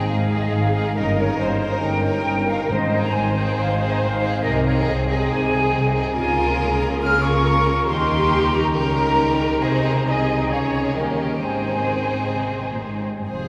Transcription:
Already playing: C4 D#4 G#4
0.09 G#1 G#2 G#4 F5
0.30 C4 D#4 G#4
0.43 D#5
0.52 G#1 G#2 F5
0.74 C4 D#4 G#4
0.96 G1 G2 C#4 D#4 A#4 D#5
1.17 C#4 D#4 A#4 C#5
1.39 G1 G2 C5 D#5
1.61 C#4 D#4 A#4 D#5
1.83 G1 G2 A#4 G5
2.05 C#4 D#4 A#4
2.27 G1 G2 A#4
2.49 C#4 D#4 A#4 F5
2.70 G#1 G#2 C4 D#4 C5 D#5
2.92 C4 D#4 G#4
3.03 A#5
3.13 G#1 G#2 C5 G#5
3.35 C4 D#4 G#4
3.47 G5
3.57 G#1 G#2 F5
3.78 C4 D#4 G#4
3.90 D#5
4.00 G#1 G#2 F5
4.21 C4 D#4 G#4
4.43 C2 C3 C4 D#4 G#4 A#4 D#5
4.65 C4 D#4 G#4 C#5
4.86 C2 C3 G#4 D#5
5.09 C4 D#4 G#4 D#5
5.31 C2 C3 G#5
5.53 C4 D#4 G#4
5.73 C2 C3
5.95 C4 D#4 G#4
6.16 C#2 C#3 A#3 F4 A#4 G#5
6.59 G#4
6.81 A#5
7.01 A#3 F4 A#4 F6
7.23 C#6
7.46 A#4
7.88 D#2 D#3 G3 D#4 G4 A#4 C6
8.54 A#5
8.75 C#2 C#3 D#4 G4 A#4 A#5
9.62 C2 C3 G#3 D#4 G#4 C5 D#5
9.97 A#5
10.07 D#4 G#4 D#5 G#5
10.42 G5
10.51 C#2 C#3 C#4 G#4 C#5 F5
10.74 G#5
10.96 D#2 D#3 G3 C#4 D#4 G4 A#4 D#5
11.20 G5
11.42 G#1 G#2 G#3 C4 D#4 G#4 C5 G#5
11.89 G#2
12.26 C#3
12.36 C3
12.72 A#2
12.82 G#2
13.18 G2
13.27 F1 F2 C4 F4 G#4 C5

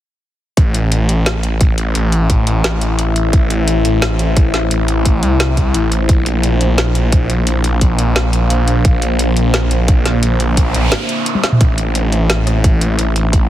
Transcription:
0.57 A1 A3 E4 C5 E5, kick, closed hi-hat
0.74 closed hi-hat
0.92 closed hi-hat
1.09 A1, closed hi-hat
1.26 snare, closed hi-hat
1.43 closed hi-hat
1.61 kick, closed hi-hat
1.78 closed hi-hat
1.95 A1, closed hi-hat
2.12 closed hi-hat
2.30 kick, closed hi-hat
2.47 A1, closed hi-hat
2.64 snare, closed hi-hat
2.81 closed hi-hat
2.99 closed hi-hat
3.16 closed hi-hat
3.33 A1, kick, closed hi-hat
3.50 closed hi-hat
3.68 closed hi-hat
3.85 A1, closed hi-hat
4.02 snare, closed hi-hat
4.19 closed hi-hat
4.37 kick, closed hi-hat
4.54 snare, closed hi-hat
4.71 A1, closed hi-hat
4.88 closed hi-hat
5.05 kick, closed hi-hat
5.23 C2, closed hi-hat
5.40 snare, closed hi-hat
5.57 kick, closed hi-hat
5.74 A1, closed hi-hat
5.92 closed hi-hat
6.09 A#1 A#3 D4 F5, kick, closed hi-hat
6.26 closed hi-hat
6.43 closed hi-hat
6.61 A#1, closed hi-hat
6.78 snare, closed hi-hat
6.95 closed hi-hat
7.12 kick, closed hi-hat
7.30 closed hi-hat
7.47 A#1, closed hi-hat
7.64 closed hi-hat
7.81 kick, closed hi-hat
7.99 A#1, closed hi-hat
8.16 snare, closed hi-hat
8.33 closed hi-hat
8.50 closed hi-hat
8.68 closed hi-hat
8.85 A#1 E5, kick, closed hi-hat
9.02 closed hi-hat
9.19 closed hi-hat
9.37 A#1, closed hi-hat
9.54 snare, closed hi-hat
9.71 closed hi-hat
9.88 kick, closed hi-hat
10.05 snare, closed hi-hat
10.23 A#1, closed hi-hat, noise sweep
10.40 closed hi-hat
10.57 kick, closed hi-hat
10.74 A#1, closed hi-hat
10.92 snare, closed hi-hat
11.09 closed hi-hat
11.26 closed hi-hat
11.35 high tom
11.44 snare, closed hi-hat
11.52 mid tom
11.61 A1 A3 E4 C5, kick, closed hi-hat
11.78 closed hi-hat
11.95 closed hi-hat
12.12 A1, closed hi-hat
12.30 snare, closed hi-hat
12.47 cross-stick, closed hi-hat
12.64 kick, closed hi-hat
12.81 closed hi-hat
12.99 A1, closed hi-hat
13.16 closed hi-hat
13.33 kick, closed hi-hat

